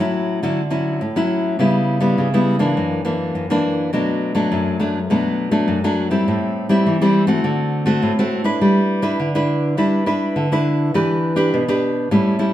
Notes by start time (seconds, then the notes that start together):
Already playing: A2
0.00 F#3 C#4 E4
0.43 D3 F#3 C#4 E4
0.70 F#3 C#4 E4
1.01 A2
1.16 F#3 C#4 E4
1.59 C#3 G3 B3 E4
2.00 G3 B3 E4
2.18 C#3
2.34 G3 B3 E4
2.59 E3 A#3 D4
2.77 F#2
3.05 E3 A#3 D4
3.35 F#2
3.50 E3 A#3 D4
3.93 B2 F#3 A3 D4
4.35 F#3 A3 D4
4.52 F#2
4.80 F#3 A3 D4
5.10 B2 F#3 A3 D4
5.51 F#3 A3 D4
5.68 F#2
5.84 F#3 A3 D4
6.11 G3 C4 E4
6.28 A2
6.69 G3 C4 E4
6.87 E3
7.02 G3 C4 E4
7.27 A3 C4 F#4
7.44 D3
7.86 A3 C4 F#4
8.03 A2
8.19 A3 C4 F#4
8.44 D4 E4 B4
8.61 G3
9.02 D4 E4 B4
9.20 D3
9.35 D4 E4 B4
9.77 G3 D4 E4 B4
10.06 D4 E4 B4
10.36 D3
10.52 D4 E4 B4
10.94 E3 D4 G4 B4
11.36 D4 G4 B4
11.54 B2
11.68 D4 G4 B4
12.11 A2 G3 C#4 E4
12.39 G3 C#4 E4